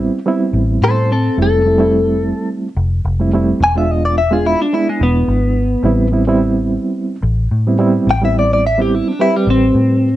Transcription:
Already playing: G3 B3 C4 E4
0.26 G3 B3 C4 E4
0.53 A1
0.82 A2 A4 C5
1.12 C4 A4
1.37 F1 G3 A3 C4 E4
1.42 A4
1.65 G3 A3 C4 E4
1.78 G3 A3 C4 E4
2.77 F1
3.05 F1
3.19 G3 A3 C4 E4
3.33 G3 A3 C4 E4
3.60 E1 G#5
3.75 G#3 B3 D4 F4 E5
3.91 D#5
4.05 D5
4.18 E5
4.31 G#3 B3 D4 F4 G#4
4.46 E4
4.62 D4
4.73 G#3 B3 D4 E4
4.89 G#3
5.01 E1 B3
5.28 G#1
5.83 A1 G3 B3 C4 E4
6.12 G3 B3 C4 E4
6.27 G3 B3 C4 E4
7.23 A1
7.51 A2
7.67 G3 B3 C4 E4
7.79 G3 B3 C4 E4
8.07 A1 G5
8.22 G3 B3 C4 E4 E5
8.39 D5
8.53 D5
8.67 E5
8.78 G3 B3 C4 E4 G4
8.95 E4
9.08 D4
9.19 G3 C4 E4 G4 B4
9.36 G3
9.47 A1 C4
9.74 A2

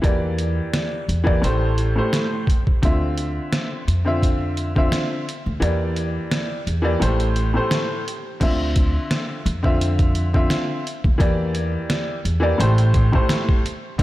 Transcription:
0.02 E2 E3 A#3 G4 D5, kick, closed hi-hat
0.38 closed hi-hat
0.74 snare, closed hi-hat
1.09 E2, closed hi-hat
1.24 E3 A#3 G4 D5, kick
1.42 A1 A2 A3 G4 C5, closed hi-hat
1.78 closed hi-hat
1.96 A2 A3 G4 C5
2.13 snare, closed hi-hat
2.47 kick, closed hi-hat
2.67 kick
2.82 D2 D3 C4 F4 E5, kick, closed hi-hat
3.18 closed hi-hat
3.53 snare, closed hi-hat
3.88 F2, closed hi-hat
4.04 D3 C4 F4 E5
4.23 kick, closed hi-hat
4.57 closed hi-hat
4.75 D3 C4 F4 E5, kick
4.92 snare, closed hi-hat
5.29 closed hi-hat
5.46 D2
5.60 E2 E3 A#3 G4 D5, closed hi-hat
5.96 closed hi-hat
6.31 snare, closed hi-hat
6.67 E2, closed hi-hat
6.82 E3 A#3 G4 D5
7.00 A1 A2 A3 G4 C5, closed hi-hat
7.20 closed hi-hat
7.36 closed hi-hat
7.54 A2 A3 G4 C5
7.71 snare, closed hi-hat
8.08 closed hi-hat
8.40 D2 D3 C4 F4 E5, kick, closed hi-hat, crash
8.76 kick, closed hi-hat
9.11 snare, closed hi-hat
9.46 F2, closed hi-hat
9.63 D3 C4 F4 E5, kick
9.81 closed hi-hat
9.99 kick, closed hi-hat
10.15 closed hi-hat
10.33 D3 C4 F4 E5, kick
10.50 snare, closed hi-hat
10.87 closed hi-hat
11.04 D2, kick
11.18 E2 E3 A#3 G4 D5, kick, closed hi-hat
11.55 closed hi-hat
11.90 snare, closed hi-hat
12.25 E2, closed hi-hat
12.40 E3 A#3 G4 D5
12.58 A1 A2 A3 G4 C5, closed hi-hat
12.78 closed hi-hat
12.94 kick, closed hi-hat
13.12 A2 A3 G4 C5, kick
13.29 snare, closed hi-hat
13.49 kick
13.66 closed hi-hat
13.98 D2 D3 C4, kick, closed hi-hat

